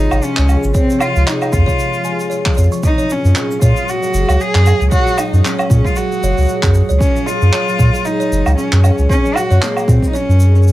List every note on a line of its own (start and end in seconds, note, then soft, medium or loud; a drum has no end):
0.00 0.37 C3 medium
0.00 0.48 G#3 loud
0.00 1.53 C4 medium
0.00 0.25 D#4 loud
0.00 2.80 F4 medium
0.11 0.20 G#1 loud
0.11 0.18 C#5 medium
0.11 low woodblock medium
0.11 shaker soft
0.22 0.41 F3 medium
0.22 0.64 C#4 loud
0.22 shaker medium
0.37 0.56 C#2 loud
0.37 0.63 C3 medium
0.37 0.49 C#5 loud
0.37 clap medium
0.37 shaker soft
0.49 1.26 G#3 loud
0.49 low woodblock medium
0.49 shaker medium
0.64 0.72 G#1 medium
0.64 0.74 C3 medium
0.64 shaker medium
0.74 1.00 C3 medium
0.74 1.03 C4 loud
0.74 0.83 C#5 medium
0.74 kick loud
0.74 shaker medium
0.90 1.06 F3 loud
0.90 shaker soft
1.00 1.15 C3 medium
1.00 1.28 F4 loud
1.00 1.15 C#5 loud
1.00 low woodblock medium
1.00 shaker loud
1.16 1.24 C#2 loud
1.16 1.93 C3 loud
1.16 shaker medium
1.27 2.04 G#3 loud
1.27 1.54 D#4 medium
1.27 clap medium
1.27 shaker medium
1.42 1.48 C#5 medium
1.42 low woodblock medium
1.42 shaker soft
1.52 1.64 F2 loud
1.52 2.58 C4 medium
1.52 2.57 F4 loud
1.52 kick loud
1.52 shaker medium
1.66 1.78 C#5 loud
1.66 kick medium
1.66 shaker soft
1.79 1.97 F3 medium
1.79 shaker medium
1.93 2.89 C3 medium
1.93 shaker soft
2.04 2.19 G#3 medium
2.04 2.19 G#5 medium
2.04 shaker medium
2.19 2.31 G#3 medium
2.19 shaker soft
2.30 2.89 G#3 medium
2.30 2.45 C#5 medium
2.30 shaker medium
2.46 2.71 F3 loud
2.46 kick loud
2.46 clap medium
2.46 shaker soft
2.54 2.68 F2 medium
2.54 2.71 C#5 medium
2.54 shaker soft
2.58 5.58 C4 medium
2.58 shaker medium
2.63 shaker soft
2.72 2.89 F3 medium
2.72 2.83 C#6 medium
2.72 shaker medium
2.83 3.09 A#2 medium
2.83 10.72 F#3 medium
2.83 10.72 A#3 medium
2.83 3.13 D#4 loud
2.83 10.72 G#4 medium
2.83 kick loud
2.83 shaker medium
2.98 3.87 F#3 loud
2.98 3.09 C#5 loud
2.98 shaker soft
3.10 3.23 A#2 medium
3.10 3.63 C#4 medium
3.10 shaker medium
3.24 3.33 F#2 loud
3.24 4.02 A#2 loud
3.24 shaker soft
3.35 4.13 G#3 loud
3.35 3.50 G#4 medium
3.35 clap medium
3.35 shaker medium
3.51 shaker soft
3.62 3.73 A#2 loud
3.62 5.17 A#3 medium
3.62 3.91 F4 loud
3.62 3.76 C#5 loud
3.62 kick medium
3.62 shaker loud
3.77 shaker soft
3.88 4.53 F#3 medium
3.88 4.42 F#4 loud
3.88 shaker medium
4.03 4.27 A#2 medium
4.03 4.14 G#4 medium
4.03 shaker soft
4.14 4.25 F#1 loud
4.14 4.90 G#3 loud
4.14 shaker medium
4.28 4.37 C#2 loud
4.28 4.38 A#2 medium
4.28 4.40 C#5 loud
4.28 low woodblock medium
4.28 shaker medium
4.40 4.64 A#2 medium
4.40 4.81 G#4 loud
4.40 shaker medium
4.54 4.73 F#2 loud
4.54 5.43 F#3 loud
4.54 clap medium
4.54 shaker soft
4.66 4.79 A#2 medium
4.66 4.80 G#4 medium
4.66 low woodblock medium
4.66 shaker medium
4.80 4.89 C#2 medium
4.80 5.58 A#2 loud
4.80 shaker soft
4.91 5.69 G#3 loud
4.91 5.19 F#4 loud
4.91 5.06 C#5 loud
4.91 kick loud
4.91 shaker medium
5.07 shaker soft
5.17 6.74 A#3 medium
5.17 5.47 D#4 loud
5.17 low woodblock medium
5.17 shaker medium
5.33 5.41 F#2 loud
5.33 5.44 G#4 medium
5.33 shaker soft
5.44 6.09 F#3 medium
5.44 5.87 C#4 medium
5.44 clap medium
5.44 shaker medium
5.59 5.83 A#2 medium
5.59 5.70 C#5 loud
5.59 low woodblock medium
5.59 shaker soft
5.70 5.81 A#2 loud
5.70 6.47 G#3 loud
5.70 kick loud
5.70 shaker loud
5.84 5.95 A#2 medium
5.84 5.98 F4 loud
5.84 kick medium
5.84 shaker medium
5.96 6.21 A#2 medium
5.96 6.75 F#4 medium
5.96 6.11 G#4 medium
5.96 shaker medium
6.10 6.99 F#3 medium
6.10 shaker soft
6.22 6.34 F#1 loud
6.22 6.36 A#2 medium
6.22 6.37 C#5 loud
6.22 shaker medium
6.37 6.46 C#2 medium
6.37 7.14 A#2 loud
6.37 shaker soft
6.40 shaker soft
6.42 shaker soft
6.45 shaker soft
6.47 7.26 G#3 loud
6.47 shaker soft
6.49 shaker medium
6.63 6.82 F#2 loud
6.63 6.74 G#4 medium
6.63 kick loud
6.63 clap medium
6.63 shaker soft
6.74 8.31 A#3 medium
6.74 shaker medium
6.89 6.98 C#2 medium
6.89 7.00 C#5 loud
6.89 shaker medium
7.00 7.66 F#3 medium
7.00 7.28 C#4 loud
7.00 kick loud
7.00 shaker medium
7.16 7.40 A#2 medium
7.16 shaker soft
7.26 8.04 G#3 loud
7.26 8.06 F4 loud
7.26 7.41 G#4 medium
7.26 shaker medium
7.42 7.50 F#2 loud
7.42 7.52 A#2 medium
7.42 shaker soft
7.53 7.78 A#2 medium
7.53 7.67 C#5 loud
7.53 clap medium
7.53 shaker medium
7.67 8.57 F#3 loud
7.67 shaker soft
7.79 7.92 A#2 medium
7.79 7.90 A#2 loud
7.79 kick medium
7.79 shaker loud
7.93 8.71 A#2 loud
7.93 8.05 G#4 medium
7.93 shaker medium
8.05 8.83 G#3 loud
8.05 8.56 D#4 loud
8.05 shaker soft
8.20 8.31 C#5 loud
8.20 shaker soft
8.31 8.42 F#1 loud
8.31 9.88 A#3 medium
8.31 shaker medium
8.46 8.55 C#2 loud
8.46 low woodblock medium
8.46 shaker soft
8.57 9.23 F#3 medium
8.57 8.95 C#4 medium
8.57 8.72 G#4 medium
8.57 shaker medium
8.72 8.91 F#2 loud
8.72 8.97 A#2 medium
8.72 clap medium
8.72 shaker soft
8.84 9.61 G#3 loud
8.84 8.98 C#5 loud
8.84 low woodblock medium
8.84 shaker medium
8.98 9.07 C#2 medium
8.98 9.09 A#2 medium
8.98 shaker medium
9.10 9.35 A#2 medium
9.10 9.38 C#4 loud
9.10 kick loud
9.10 shaker medium
9.24 10.13 F#3 loud
9.24 9.35 G#4 medium
9.24 shaker soft
9.36 9.50 A#2 medium
9.36 9.65 F#4 loud
9.36 low woodblock medium
9.36 shaker medium
9.51 9.59 F#2 loud
9.51 10.28 A#2 loud
9.51 9.61 C#5 loud
9.51 shaker medium
9.62 10.39 G#3 loud
9.62 9.91 A#3 medium
9.62 clap medium
9.62 shaker medium
9.77 low woodblock medium
9.77 shaker soft
9.88 9.99 A#2 loud
9.88 10.72 A#3 medium
9.88 10.08 C4 medium
9.88 10.02 G#4 medium
9.88 kick loud
9.88 shaker medium
10.02 kick medium
10.02 shaker soft
10.09 10.16 D#4 medium
10.13 10.65 F#3 medium
10.13 10.67 C#4 medium
10.13 10.28 C#5 loud
10.13 shaker medium
10.29 10.72 F#2 medium
10.29 10.72 A#2 medium
10.29 shaker soft
10.40 10.72 G#3 medium
10.40 shaker medium
10.55 10.72 C#4 medium
10.55 10.66 G#4 medium
10.55 shaker soft
10.63 shaker soft
10.67 10.72 F#3 medium
10.67 shaker medium